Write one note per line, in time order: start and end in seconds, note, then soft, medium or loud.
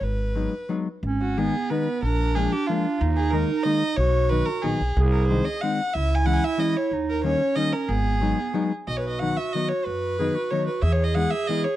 0.01 0.45 G#1 medium
0.01 0.70 B4 medium
0.35 0.53 F#3 soft
0.35 0.53 G#3 soft
0.35 0.53 B3 soft
0.35 0.54 D#4 medium
0.69 0.87 F#3 medium
0.69 0.87 G#3 soft
0.69 0.87 B3 soft
0.69 0.87 D#4 medium
1.03 1.47 G#1 loud
1.03 1.40 C#4 medium
1.21 1.39 F#4 medium
1.37 1.54 D#3 medium
1.37 1.54 G#3 medium
1.37 1.55 B3 medium
1.37 2.06 B3 medium
1.37 1.55 D#4 medium
1.37 1.71 G#4 medium
1.70 1.87 D#3 medium
1.70 1.87 G#3 soft
1.70 1.87 B3 soft
1.70 1.88 D#4 medium
1.70 2.02 B4 medium
2.02 2.45 A#1 medium
2.02 3.02 D4 medium
2.02 2.37 A#4 medium
2.35 2.53 F3 medium
2.35 2.53 G#3 medium
2.35 2.53 A#3 soft
2.35 2.53 D4 medium
2.35 2.54 G#4 medium
2.53 2.69 G4 medium
2.67 2.86 F3 medium
2.67 2.86 G#3 medium
2.67 2.86 A#3 medium
2.67 3.00 F4 medium
2.71 2.86 D4 medium
3.00 3.43 D#2 loud
3.00 3.98 D#4 loud
3.16 3.32 G#4 medium
3.31 3.50 D#3 medium
3.31 3.49 G#3 medium
3.31 3.50 A#3 medium
3.31 3.50 D#4 medium
3.31 3.65 A#4 medium
3.63 3.82 D#3 medium
3.63 3.82 G#3 medium
3.63 3.82 A#3 soft
3.63 3.83 D#4 medium
3.63 3.98 D#5 medium
3.96 4.41 B1 medium
3.96 4.77 F#4 loud
3.96 4.31 C#5 medium
4.29 4.48 D#3 soft
4.29 4.48 F#3 soft
4.29 4.48 B3 soft
4.29 4.48 D#4 medium
4.29 4.47 B4 medium
4.46 4.63 A#4 medium
4.62 4.79 A#1 medium
4.62 4.81 D#3 medium
4.62 4.81 F#3 soft
4.62 4.81 B3 medium
4.62 4.81 D#4 medium
4.62 4.96 G#4 medium
4.80 4.96 B1 medium
4.97 5.40 C2 loud
4.97 5.66 G#4 loud
5.12 5.26 A#4 medium
5.27 5.47 D#3 medium
5.27 5.47 G#3 soft
5.27 5.47 C4 medium
5.27 5.46 C5 medium
5.31 5.47 D#4 medium
5.45 5.63 D#5 medium
5.61 5.79 D#3 medium
5.61 5.80 G#3 medium
5.61 5.80 C4 soft
5.61 5.80 D#4 medium
5.61 5.95 F#5 medium
5.94 6.37 C#2 medium
5.94 6.95 E4 medium
5.94 6.16 E5 medium
6.15 6.27 G#5 medium
6.25 6.43 E3 medium
6.25 6.43 G#3 medium
6.25 6.43 C#4 medium
6.25 6.43 E4 medium
6.25 6.35 F#5 loud
6.33 6.46 F#5 loud
6.33 6.37 G#5 medium
6.44 6.61 E5 loud
6.58 6.75 E3 medium
6.58 6.75 G#3 medium
6.58 6.75 C#4 medium
6.58 6.75 E4 medium
6.58 6.78 D#5 medium
6.77 6.92 C#5 medium
6.91 7.33 D#2 medium
6.91 7.25 D#4 medium
7.09 7.23 A#4 medium
7.24 7.40 D#3 medium
7.24 7.40 G3 soft
7.24 7.41 A#3 medium
7.24 7.91 C#4 medium
7.24 7.41 D#4 medium
7.24 7.57 C#5 medium
7.56 7.72 D#3 medium
7.56 7.73 G3 medium
7.56 7.73 A#3 medium
7.56 7.73 D#4 medium
7.56 7.74 D#5 medium
7.72 7.90 A#4 medium
7.89 8.31 G#1 loud
7.89 8.21 B3 medium
7.89 8.71 G#4 medium
8.21 8.37 F#3 medium
8.21 8.38 G#3 medium
8.21 8.38 B3 soft
8.21 8.69 B3 medium
8.21 8.38 D#4 medium
8.54 8.71 F#3 medium
8.54 8.71 G#3 medium
8.54 8.71 B3 medium
8.54 8.71 D#4 medium
8.87 9.30 B1 medium
8.87 10.15 F#4 medium
8.87 8.98 D#5 medium
8.97 9.09 B4 medium
8.97 8.99 C#5 medium
9.08 9.21 D#5 medium
9.19 9.37 D#3 medium
9.19 9.37 F#3 soft
9.19 9.38 B3 medium
9.19 9.38 D#4 medium
9.19 9.39 F#5 medium
9.37 9.54 E5 medium
9.53 9.71 D#3 medium
9.53 9.71 F#3 medium
9.53 9.71 B3 medium
9.53 9.71 D#4 medium
9.53 9.70 D#5 medium
9.69 9.87 C#5 medium
9.86 10.29 F#2 medium
9.86 10.52 B4 medium
10.19 10.36 D#3 medium
10.19 10.36 F#3 soft
10.19 10.36 B3 medium
10.19 10.36 D#4 medium
10.19 10.37 G#4 medium
10.35 10.85 F#4 medium
10.50 10.68 D#3 medium
10.50 10.67 F#3 medium
10.50 10.68 B3 soft
10.50 10.68 D#4 medium
10.50 10.66 C#5 medium
10.67 10.83 B4 medium
10.82 11.25 E2 medium
10.82 11.76 G#4 loud
10.82 10.94 E5 medium
10.92 11.05 C#5 medium
11.04 11.16 D#5 medium
11.15 11.32 E3 medium
11.15 11.32 G#3 medium
11.15 11.32 B3 medium
11.15 11.33 E4 medium
11.15 11.32 F#5 loud
11.30 11.49 E5 loud
11.47 11.65 E3 medium
11.47 11.65 G#3 soft
11.47 11.65 B3 medium
11.47 11.66 E4 medium
11.47 11.66 D#5 loud
11.64 11.76 C#5 medium